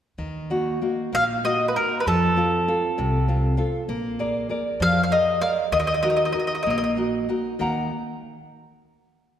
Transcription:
0.18 D#2 D#3
0.50 A#3 D#4 F#4
0.82 A#3 D#4 F#4
1.13 A#1 A#3 F5
1.44 A#3 D#4 F#4 D#5
1.68 B4
1.76 A#3 D#4 F#4 A#4
2.00 B4
2.07 F2 F3 A4
2.37 C4 F4 A4
2.68 C4 F4 A4
2.98 C2 C3
3.28 C4 F4 A4
3.57 C4 F4 A4
3.88 A#1 A#3
4.19 G#4 A#4 D5
4.49 G#4 A#4 D5
4.80 F2 F3 F5
5.04 F5
5.11 G#4 A#4 D#5 F5
5.41 G#4 A#4 D5 F5
5.72 D#2 D#3 D#5
5.80 D#5
5.87 D#5
5.94 D#5
6.03 D#4 F#4 A#4 D#5
6.10 D#5
6.16 D#5
6.25 D#5
6.32 D#4 F#4 A#4 D#5
6.40 D#5
6.47 D#5
6.55 D#5
6.63 A#1 A#3 D#5
6.70 D#5
6.78 D#5
6.84 D#5
6.97 D#4 F#4 A#4
7.29 D#4 F#4 A#4
7.59 D#2 D#3 A#3 D#4 A#4 F#5 A#5

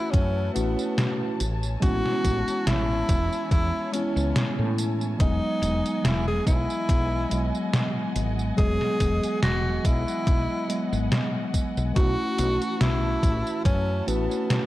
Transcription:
Already playing: E3 A3 C#4 E4 F#4 B4 F#5 A5
0.11 F#2 C#4, kick, closed hi-hat, tambourine
0.54 A1 A3 B3 C#4 E4 F#4, closed hi-hat, tambourine
0.79 tambourine
0.98 snare, closed hi-hat, tambourine
1.40 A1 C#5 G#5, closed hi-hat, tambourine
1.63 tambourine
1.80 A1 G#3 B3 C#4 E4 F#4, kick, closed hi-hat, tambourine
2.06 snare
2.24 A1, kick, closed hi-hat, tambourine
2.48 closed hi-hat, tambourine
2.67 A1 E4, snare, closed hi-hat, tambourine
3.09 E1, kick, closed hi-hat, tambourine
3.33 tambourine
3.51 E2 E4, kick, closed hi-hat, tambourine
3.92 G#3 B3 C#4 E4, closed hi-hat, tambourine
4.16 C#2, tambourine
4.36 snare, closed hi-hat, tambourine
4.59 A2
4.78 closed hi-hat, tambourine
5.01 tambourine
5.18 E1 F#3 G#3 B3 D#4 D#5 F#5, kick, closed hi-hat, tambourine
5.62 E1, closed hi-hat, tambourine
5.86 closed hi-hat, tambourine
6.04 E1 E4, snare, closed hi-hat, tambourine
6.28 G#4
6.47 B1 E4, kick, closed hi-hat, tambourine
6.70 tambourine
6.89 B1, kick, closed hi-hat, tambourine
7.29 B1 F#3 G#3 B3 D#5, closed hi-hat, tambourine
7.55 tambourine
7.73 snare, closed hi-hat, tambourine
8.16 G#1, closed hi-hat, tambourine
8.39 tambourine
8.56 E1 F#3 G#3 B3 G#4 D#5, kick, closed hi-hat, tambourine
8.81 snare
9.00 E1, kick, closed hi-hat, tambourine
9.23 closed hi-hat, tambourine
9.43 E1 F#4, snare, closed hi-hat, tambourine
9.85 B1 E4, kick, closed hi-hat, tambourine
10.08 tambourine
10.27 B1, kick, closed hi-hat, tambourine
10.67 F#3 G#3 B3 D#5, closed hi-hat, tambourine
10.93 G#1, tambourine
11.12 snare, closed hi-hat, tambourine
11.54 kick, closed hi-hat, tambourine
11.77 B1, tambourine
11.94 B1 A3 C#4 E4 F#4 B4 A5, kick, closed hi-hat, tambourine
12.39 B1, closed hi-hat, tambourine
12.62 closed hi-hat, tambourine
12.81 B1 E4, snare, closed hi-hat, tambourine
13.23 A1, kick, closed hi-hat, tambourine
13.47 tambourine
13.65 F#2 C#4, kick, closed hi-hat, tambourine
14.07 A1 A3 B3 C#4 E4 F#4, closed hi-hat, tambourine
14.31 tambourine
14.50 snare, closed hi-hat, tambourine

